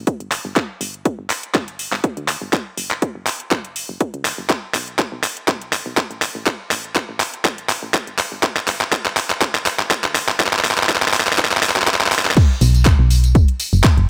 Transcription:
0.07 kick, closed hi-hat
0.20 fm bass G1, closed hi-hat
0.32 clap, open hi-hat
0.45 fm bass G1
0.56 kick, clap, closed hi-hat
0.81 fm bass G1, open hi-hat
0.94 closed hi-hat
1.05 kick, closed hi-hat
1.19 fm bass G1
1.30 clap, open hi-hat
1.43 closed hi-hat
1.55 fm bass G1, kick, clap, closed hi-hat
1.68 closed hi-hat
1.79 open hi-hat
1.92 fm bass G1, clap
2.04 kick, closed hi-hat
2.17 fm bass D2, closed hi-hat
2.28 clap, open hi-hat
2.42 fm bass G1
2.53 kick, clap, closed hi-hat
2.77 fm bass F#1, open hi-hat
2.91 clap, closed hi-hat
3.02 kick, closed hi-hat
3.15 fm bass F#1
3.27 clap, open hi-hat
3.40 closed hi-hat
3.51 fm bass F#1, kick, clap, closed hi-hat
3.65 closed hi-hat
3.76 open hi-hat
3.89 fm bass F#1
4.00 kick, closed hi-hat
4.14 fm bass C#2, closed hi-hat
4.25 clap, open hi-hat
4.38 fm bass F#1
4.50 kick, clap, closed hi-hat
4.74 fm bass B1, clap, open hi-hat
4.88 closed hi-hat
4.99 kick, clap, closed hi-hat
5.12 fm bass B1
5.23 clap, open hi-hat
5.37 closed hi-hat
5.48 fm bass B1, kick, clap, closed hi-hat
5.62 closed hi-hat
5.73 clap, open hi-hat
5.86 fm bass B1
5.97 kick, clap, closed hi-hat
6.11 fm bass A1, closed hi-hat
6.22 clap, open hi-hat
6.35 fm bass A1
6.47 kick, clap, closed hi-hat
6.71 fm bass A1, clap, open hi-hat
6.84 closed hi-hat
6.96 kick, clap, closed hi-hat
7.09 fm bass A1
7.20 clap, open hi-hat
7.34 closed hi-hat
7.45 fm bass A1, kick, clap, closed hi-hat
7.58 closed hi-hat
7.69 clap, open hi-hat
7.83 fm bass A1
7.94 kick, clap, closed hi-hat
8.07 fm bass G1, closed hi-hat
8.19 clap, open hi-hat
8.32 fm bass G1
8.43 kick, clap, closed hi-hat
8.56 clap
8.68 fm bass G1, clap, open hi-hat
8.81 clap, closed hi-hat
8.92 kick, clap, closed hi-hat
9.06 fm bass G1, clap
9.17 clap, open hi-hat
9.30 clap, closed hi-hat
9.42 fm bass G1, kick, clap, closed hi-hat
9.55 clap, closed hi-hat
9.66 clap, open hi-hat
9.79 fm bass G1, clap
9.91 kick, clap, closed hi-hat
10.04 fm bass D2, clap, closed hi-hat
10.15 clap, open hi-hat
10.29 fm bass G1, clap
10.40 kick, clap, closed hi-hat
10.47 clap
10.53 clap
10.59 clap
10.64 fm bass F#1, clap, open hi-hat
10.71 clap
10.78 clap, closed hi-hat
10.83 clap
10.89 kick, clap, closed hi-hat
10.96 clap
11.02 fm bass F#1, clap, closed hi-hat
11.08 clap
11.14 clap, open hi-hat
11.20 clap
11.27 clap, closed hi-hat
11.33 clap
11.38 fm bass F#2, kick, clap, closed hi-hat
11.45 clap
11.51 clap, closed hi-hat
11.57 clap
11.63 clap, open hi-hat
11.69 clap
11.76 fm bass F#2, clap, closed hi-hat
11.82 clap
11.87 kick, clap, closed hi-hat
11.94 clap
12.01 fm bass C#2, clap, closed hi-hat
12.06 clap
12.12 clap, open hi-hat
12.19 clap
12.25 fm bass C#2, clap
12.31 clap
12.37 kick, closed hi-hat, tambourine, crash
12.61 fm bass B1, open hi-hat, tambourine
12.74 closed hi-hat, tambourine
12.85 kick, clap, closed hi-hat, tambourine
12.99 fm bass B1
13.10 open hi-hat, tambourine
13.24 closed hi-hat, tambourine
13.35 fm bass F#1, kick, closed hi-hat, tambourine
13.48 closed hi-hat
13.60 open hi-hat, tambourine
13.73 fm bass F#1, tambourine
13.84 kick, clap, closed hi-hat, tambourine
13.97 fm bass F#1, closed hi-hat

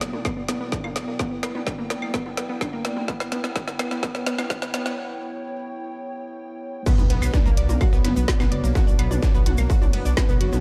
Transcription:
Already playing: synth drone B2 F#3, analog synth pad B3 E4 D5 G5
0.01 synth arpeggio sound D5, snare, closed hi-hat
0.13 synth arpeggio sound A#3, mid tom
0.25 synth arpeggio sound B3, kick, snare, claves
0.37 synth arpeggio sound B3
0.48 synth arpeggio sound B3, snare, closed hi-hat, mid tom
0.61 synth arpeggio sound B3
0.72 synth arpeggio sound D4, kick, snare
0.84 synth arpeggio sound A#3, mid tom, claves
0.96 synth arpeggio sound D5, snare, closed hi-hat
1.08 synth arpeggio sound A#3
1.19 synth arpeggio sound B3, kick, snare, mid tom
1.31 synth arpeggio sound B3
1.43 synth arpeggio sound B3, snare, closed hi-hat, claves
1.55 synth arpeggio sound B3, mid tom
1.67 synth arpeggio sound D4, kick, snare
1.79 synth arpeggio sound A#3
1.90 synth arpeggio sound D5, snare, closed hi-hat, mid tom
2.02 synth arpeggio sound A#3, claves
2.14 synth arpeggio sound B3, kick, snare
2.26 synth arpeggio sound B3, mid tom
2.37 synth arpeggio sound B3, snare, closed hi-hat
2.49 synth arpeggio sound B3
2.61 synth arpeggio sound D4, kick, snare, mid tom, claves
2.73 synth arpeggio sound A#3
2.85 synth arpeggio sound D5, snare, closed hi-hat
2.97 synth arpeggio sound A#3, mid tom
3.08 synth arpeggio sound B3, analog synth pad C#5, kick, snare
3.20 synth arpeggio sound B3, snare, claves
3.32 synth arpeggio sound B3, snare, closed hi-hat, mid tom
3.44 synth arpeggio sound B3, snare
3.56 synth arpeggio sound B3, kick, snare
3.68 synth arpeggio sound B3, snare, mid tom
3.79 synth arpeggio sound B3, snare, closed hi-hat, claves
3.91 synth arpeggio sound B3, snare
4.03 synth arpeggio sound B3, kick, snare, mid tom
4.15 synth arpeggio sound B3, snare
4.26 synth arpeggio sound B3, snare, closed hi-hat
4.38 synth arpeggio sound B3, snare, mid tom, claves
4.50 synth arpeggio sound B3, kick, snare
4.62 synth arpeggio sound B3, snare
4.74 synth arpeggio sound B3, snare, closed hi-hat, mid tom
4.86 synth arpeggio sound B3, snare
6.86 synth drone B2 F#3, synth arpeggio sound B3 B4, analog synth pad B3 D4 F#4 C#5, kick, ride, crash, impact, shaker
6.98 detuned saw bass B1, synth arpeggio sound B3 B4, mid tom, shaker
7.10 detuned saw bass B1, synth arpeggio sound B3 B4, snare, closed hi-hat, ride
7.22 detuned saw bass B1, synth arpeggio sound B3 B4, snare, claves, shaker
7.34 synth arpeggio sound D4 D5, kick, snare, mid tom, ride, shaker
7.46 detuned saw bass B1, synth arpeggio sound A#3 A#4, ride, shaker
7.57 detuned saw bass B1, synth arpeggio sound D5 D6, closed hi-hat, ride
7.69 detuned saw bass B1, synth arpeggio sound A#3 A#4, mid tom, shaker
7.81 synth arpeggio sound F#4 F#5, kick, ride, claves, shaker
7.93 detuned saw bass B1, synth arpeggio sound B3 B4, snare, shaker
8.04 detuned saw bass F#1, synth arpeggio sound B3 B4, snare, closed hi-hat, mid tom, ride
8.16 detuned saw bass B1, synth arpeggio sound B3 B4, shaker
8.28 synth arpeggio sound D4 D5, kick, snare, ride, shaker
8.40 detuned saw bass B1, synth arpeggio sound B3 B4, snare, mid tom, ride, claves, shaker
8.52 detuned saw bass F#1, synth arpeggio sound D5 D6, closed hi-hat
8.64 detuned saw bass B1, synth arpeggio sound A#3 A#4, ride, shaker
8.75 synth arpeggio sound F#4 F#5, kick, snare, mid tom, ride, shaker
8.87 detuned saw bass B1, synth arpeggio sound D4 D5, shaker
8.99 detuned saw bass B1, synth arpeggio sound B3 B4, closed hi-hat, ride, claves
9.11 detuned saw bass B1, synth arpeggio sound D4 D5, mid tom, shaker
9.23 synth arpeggio sound D4 D5, kick, snare, ride, shaker
9.34 detuned saw bass B1, synth arpeggio sound B3 B4, shaker
9.46 detuned saw bass B1, synth arpeggio sound F#4 F#5, closed hi-hat, mid tom, ride
9.58 detuned saw bass B1, synth arpeggio sound A#3 A#4, snare, claves, shaker
9.70 synth arpeggio sound F#4 F#5, kick, ride, shaker
9.82 detuned saw bass B1, synth arpeggio sound D4 D5, mid tom, shaker
9.93 detuned saw bass F#1, synth arpeggio sound B3 B4, closed hi-hat, open hi-hat
10.05 detuned saw bass B1, synth arpeggio sound D4 D5, ride, shaker
10.17 synth arpeggio sound B3 B4, kick, snare, mid tom, ride, claves, shaker
10.29 detuned saw bass B1, synth arpeggio sound B3 B4, shaker
10.41 detuned saw bass F#1, synth arpeggio sound F#4 F#5, closed hi-hat, ride
10.53 detuned saw bass B1, synth arpeggio sound B3 B4, snare, mid tom, shaker

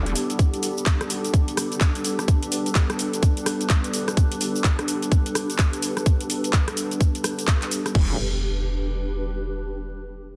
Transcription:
Already playing: wobble bass E1, analog synth pad G3 B3 E4 A4, ambient pad D4 G4 B4
0.06 closed hi-hat, shaker
0.15 open hi-hat, shaker
0.30 closed hi-hat, shaker
0.39 analog synth pad D4, kick, closed hi-hat, shaker
0.54 closed hi-hat, shaker
0.63 open hi-hat, shaker
0.78 shaker
0.86 kick, clap, closed hi-hat, shaker
1.01 cross-stick, closed hi-hat, shaker
1.10 open hi-hat, shaker
1.18 ambient pad B4
1.24 closed hi-hat, shaker
1.34 kick, closed hi-hat, shaker
1.48 closed hi-hat, shaker
1.57 cross-stick, open hi-hat, shaker
1.72 closed hi-hat, shaker
1.81 kick, clap, closed hi-hat, shaker
1.95 closed hi-hat, shaker
2.05 open hi-hat, shaker
2.19 cross-stick, closed hi-hat, shaker
2.28 kick, closed hi-hat, shaker
2.43 closed hi-hat, shaker
2.52 open hi-hat, shaker
2.66 closed hi-hat, shaker
2.75 kick, clap, closed hi-hat, shaker
2.90 cross-stick, closed hi-hat, shaker
2.99 open hi-hat, shaker
3.13 closed hi-hat, shaker
3.23 kick, closed hi-hat, shaker
3.37 closed hi-hat, shaker
3.46 cross-stick, open hi-hat, shaker
3.61 closed hi-hat, shaker
3.70 kick, clap, closed hi-hat, shaker
3.84 closed hi-hat, shaker
3.94 open hi-hat, shaker
4.08 cross-stick, closed hi-hat, shaker
4.17 kick, closed hi-hat, shaker
4.32 closed hi-hat, shaker
4.41 open hi-hat, shaker
4.56 shaker
4.64 kick, clap, closed hi-hat, shaker
4.79 cross-stick, closed hi-hat, shaker
4.88 open hi-hat, shaker
5.02 closed hi-hat, shaker
5.12 kick, closed hi-hat, shaker
5.26 closed hi-hat, shaker
5.35 cross-stick, open hi-hat, shaker
5.50 closed hi-hat, shaker
5.59 kick, clap, closed hi-hat, shaker
5.73 closed hi-hat, shaker
5.82 open hi-hat, shaker
5.97 cross-stick, closed hi-hat, shaker
6.06 kick, closed hi-hat, shaker
6.21 closed hi-hat, shaker
6.30 open hi-hat, shaker
6.44 closed hi-hat, shaker
6.53 kick, clap, closed hi-hat, shaker
6.68 cross-stick, closed hi-hat, shaker
6.77 open hi-hat, shaker
6.91 closed hi-hat, shaker
7.01 kick, closed hi-hat, shaker
7.15 closed hi-hat, shaker
7.24 cross-stick, open hi-hat, shaker
7.39 closed hi-hat, shaker
7.48 kick, clap, closed hi-hat, shaker
7.62 clap, closed hi-hat, shaker
7.71 open hi-hat, shaker
7.86 cross-stick, closed hi-hat, shaker
7.95 wobble bass E1, ambient pad D4, kick, crash, impact
8.04 ambient pad G4
8.11 ambient pad B4

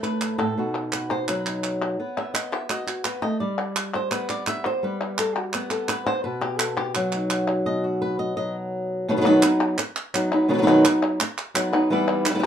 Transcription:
Already playing: nylon-string guitar A2 A3
0.03 nylon-string guitar B4, clap
0.21 clap
0.38 nylon-string guitar A2 A4
0.58 nylon-string guitar B2 D#4 F#4
0.92 nylon-string guitar B4, clap
1.11 nylon-string guitar C5
1.28 nylon-string guitar F#3 B4, clap
1.46 nylon-string guitar D#4, clap
1.64 clap
2.00 nylon-string guitar B3 B4
2.17 nylon-string guitar E5
2.34 nylon-string guitar D#5, clap
2.52 nylon-string guitar E5
2.70 nylon-string guitar F#4 D#5, clap
2.87 nylon-string guitar F#4, clap
3.05 nylon-string guitar B3 B4, clap
3.22 nylon-string guitar A3 D#5
3.40 nylon-string guitar G3 D5
3.76 clap
3.95 nylon-string guitar C5
4.11 nylon-string guitar B3 B4, clap
4.29 nylon-string guitar D5, clap
4.47 nylon-string guitar E5, clap
4.66 nylon-string guitar C5
4.83 nylon-string guitar G3 B4
5.18 nylon-string guitar A4, clap
5.36 nylon-string guitar F#4
5.53 nylon-string guitar B3 G4, clap
5.70 nylon-string guitar A4, clap
5.89 nylon-string guitar B4, clap
6.06 nylon-string guitar C5
6.24 nylon-string guitar B2 B4
6.41 nylon-string guitar G4
6.59 nylon-string guitar A4, clap
6.77 nylon-string guitar G4
6.95 nylon-string guitar F#3 F#4, clap
7.12 nylon-string guitar D#4, clap
7.30 clap
7.66 nylon-string guitar B2 D#5
7.84 nylon-string guitar F#4
8.02 nylon-string guitar B4
8.19 nylon-string guitar D#5
8.37 nylon-string guitar F#3 D#5
9.08 nylon-string guitar B2 D#3 F#3 B3 D#4 B4
9.17 nylon-string guitar D#3 F#3 B3 D#4 B4
9.21 nylon-string guitar D#3 F#3 B3 D#4 B4
9.25 nylon-string guitar B2 D#3 F#3 B3 D#4 B4
9.43 nylon-string guitar F#3 B3 D#4 B4, clap
9.78 muted nylon-string guitar stroke, clap
9.96 clap
10.14 nylon-string guitar F#3 B3 D#4 B4, clap
10.32 nylon-string guitar F#3 B3 D#4 B4
10.49 nylon-string guitar B2 D#3 F#3 B3 D#4 B4
10.53 nylon-string guitar D#3 F#3 B3 D#4 B4
10.58 nylon-string guitar D#3 F#3 B3 D#4 B4
10.62 nylon-string guitar D#3 F#3 B3 D#4 B4
10.67 nylon-string guitar B2 D#3 F#3 B3 D#4 B4
10.85 nylon-string guitar B3 D#4 B4, clap
11.20 muted nylon-string guitar stroke, clap
11.38 clap
11.54 nylon-string guitar F#3 B3 D#4 B4, clap
11.73 nylon-string guitar F#3 B3 D#4 B4
11.90 nylon-string guitar E3 G3 B3 E4 B4
12.25 nylon-string guitar B3 E4 B4, clap
12.30 nylon-string guitar G3 E4 B4
12.35 nylon-string guitar G3 B3 E4 B4
12.39 nylon-string guitar G3 B3 E4 B4

